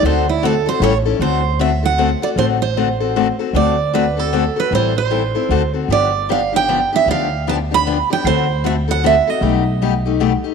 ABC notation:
X:1
M:3/4
L:1/8
Q:"Swing" 1/4=153
K:Dmix
V:1 name="Steel-string acoustic guitar"
c E A c ^c z | c2 e f2 d | c c4 z | d2 B A2 B |
c c4 z | d2 =f g2 e | =f2 a b2 g | c2 e f e _e- |
_e4 z2 |]
V:2 name="Steel-string acoustic guitar"
[D,A,CFA] z [D,A,CFA] [CFA] [E,G,^CEA] [CEA] | [D,A,CFA] z [D,A,CFA] [CFA] [D,A,CFA] [CFA] | [D,A,CFA] z [D,A,CFA] [CFA] [D,A,CFA] [CFA] | [D,A,CFA] z [D,A,CFA] [CFA] [D,A,CFA] [CFA] |
[E,G,CEA] z [E,G,CEA] [CEA] [D,A,CFA] [CFA] | [D,=F,B,DG] z [D,F,B,DG] [B,DG] [D,F,B,DG] [B,DG] | [D,=F,B,DG] z [D,F,B,DG] [B,DG] [D,F,B,DG] [B,DG] | [D,A,CFA] z [D,A,CFA] [CFA] [D,A,CFA] [CFA] |
[B,,G,A,^DG] z [B,,G,A,DG] [A,DG] [B,,G,A,DG] [A,DG] |]
V:3 name="Upright bass" clef=bass
D,,4 A,,,2 | D,,6 | A,,,6 | D,,6 |
A,,,4 D,,2 | G,,,6 | D,,6 | D,,6 |
B,,,6 |]